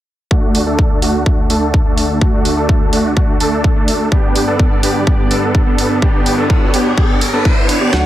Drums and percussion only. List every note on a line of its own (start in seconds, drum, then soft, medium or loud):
0.31 kick loud
0.55 open hi-hat medium
0.79 kick loud
1.02 open hi-hat medium
1.26 kick loud
1.50 open hi-hat medium
1.74 kick loud
1.98 open hi-hat medium
2.21 kick loud
2.45 open hi-hat loud
2.69 kick loud
2.93 open hi-hat loud
3.17 kick loud
3.40 open hi-hat loud
3.64 kick loud
3.88 open hi-hat loud
4.12 kick loud
4.36 open hi-hat loud
4.59 kick loud
4.83 open hi-hat loud
5.07 kick loud
5.31 open hi-hat loud
5.55 kick loud
5.78 open hi-hat loud
6.02 kick loud
6.26 open hi-hat loud
6.50 kick loud
6.74 open hi-hat loud
6.98 kick loud
7.21 open hi-hat loud
7.45 kick loud
7.69 open hi-hat loud
7.93 kick loud
7.93 snare soft
7.93 closed hi-hat medium